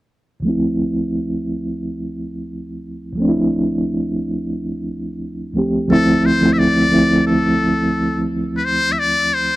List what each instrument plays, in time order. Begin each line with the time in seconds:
0.40 reed electric piano D2 F3
0.45 reed electric piano A3 C4
0.49 reed electric piano E4
3.13 reed electric piano D2 F3
3.18 reed electric piano A3 C4
3.22 reed electric piano D4
3.29 reed electric piano E4
5.54 reed electric piano D2 F3 A3 C4
5.58 reed electric piano G4
5.88 reed electric piano D2 F3 A3 C4
5.92 reed electric piano E4, muted trumpet A4
6.26 muted trumpet C5
6.40 reed electric piano D2 F3 A3 C4
6.46 reed electric piano E4
6.53 muted trumpet E5
6.58 muted trumpet D5
6.89 reed electric piano D2 F3 A3 C4
6.94 reed electric piano E4
7.27 muted trumpet A4
8.57 muted trumpet B4
8.65 muted trumpet C5
8.92 muted trumpet E5
8.99 muted trumpet D5
9.34 muted trumpet C5